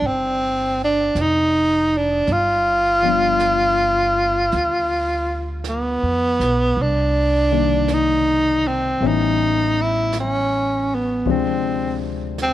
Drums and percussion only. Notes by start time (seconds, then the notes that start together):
0.03 brush sweep
1.16 brush sweep, snare, hi-hat pedal
2.27 brush sweep, snare
3.39 brush sweep, snare, hi-hat pedal
4.52 brush sweep, snare
5.64 brush sweep, snare, hi-hat pedal
6.40 snare
6.77 brush sweep
7.88 brush sweep, snare, hi-hat pedal
9.01 brush sweep
10.13 brush sweep, snare, hi-hat pedal
11.25 brush sweep
12.38 brush sweep, snare, hi-hat pedal